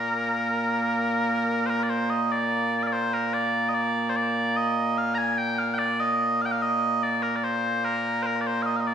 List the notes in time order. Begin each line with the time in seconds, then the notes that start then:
Already playing: A#2 A#3 A#4
1.66 A#4 C5
1.83 D5
1.90 C5
2.10 D#5
2.32 D5
2.83 F5
2.87 D5
2.93 C5
3.13 A#4
3.33 D5
3.69 D#5
3.74 D5
4.09 C5
4.16 D5
4.57 D#5
4.98 F5
5.15 G#5 A#5
5.38 G5
5.59 F5
5.74 G5
5.79 D5
6.00 D#5
6.41 F5
6.46 G5
6.52 F5
6.62 D#5
7.03 D5
7.22 A#4
7.36 D5
7.44 C5
7.84 A#4
8.22 A#4 C5
8.41 D5
8.47 C5
8.62 D#5 F5
8.76 F5
8.80 D#5
8.87 D5